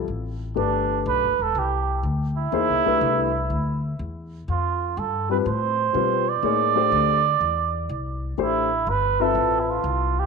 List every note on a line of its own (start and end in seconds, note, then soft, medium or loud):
0.08 0.55 A1 medium
0.55 1.04 G1 medium
0.55 1.32 A3 soft
0.55 1.32 D4 soft
0.55 1.03 D4 medium
0.55 1.32 G4 soft
0.55 1.32 B4 medium
1.06 1.25 B1 medium
1.06 1.44 B4 medium
1.23 1.38 G1 soft
1.39 1.54 E1 medium
1.39 1.60 A4 medium
1.55 2.02 C2 medium
1.55 2.05 G4 medium
2.03 2.51 D2 medium
2.38 3.80 E4 loud
2.52 2.70 E2 medium
2.52 2.82 A#3 medium
2.52 2.82 D#4 soft
2.52 2.83 G#4 medium
2.52 2.83 C5 medium
2.69 2.85 C2 medium
2.85 3.00 B1 medium
2.85 3.28 A3 medium
2.85 3.28 D4 soft
2.85 3.28 G4 soft
2.85 3.28 B4 medium
3.01 3.48 C2 medium
3.50 3.97 D2 medium
3.99 4.46 E2 medium
4.48 4.95 F2 medium
4.48 5.00 F4 medium
4.97 5.44 G2 medium
4.97 5.30 A4 medium
5.29 5.44 G3 medium
5.29 5.44 C4 medium
5.29 5.44 F4 medium
5.29 5.38 B4 medium
5.29 5.45 B4 medium
5.46 5.93 A2 medium
5.46 6.31 C5 medium
5.93 6.41 B2 medium
5.93 6.23 G3 medium
5.93 6.24 C4 soft
5.93 6.24 F4 medium
5.93 6.24 B4 medium
6.29 8.23 D5 loud
6.43 6.90 A2 medium
6.43 6.73 A#3 medium
6.43 6.73 D#4 medium
6.43 6.73 G#4 medium
6.43 6.74 C#5 medium
6.75 7.18 A3 medium
6.75 7.18 D4 soft
6.75 7.18 G4 medium
6.75 7.19 C5 medium
6.92 7.39 D2 medium
7.40 7.88 E2 medium
7.89 8.36 C2 medium
8.38 8.85 A1 medium
8.38 8.68 A3 medium
8.38 8.68 D4 soft
8.38 8.91 E4 medium
8.38 8.68 G4 soft
8.38 8.68 C5 medium
8.87 9.34 G1 medium
8.87 9.23 B4 medium
9.20 9.81 C4 medium
9.20 9.81 F4 medium
9.20 9.61 A4 medium
9.20 9.81 B4 medium
9.20 9.82 E5 medium
9.35 9.82 A1 medium
9.60 9.71 E4 medium
9.70 10.21 F4 medium
9.84 10.26 C2 medium
10.20 10.26 G4 medium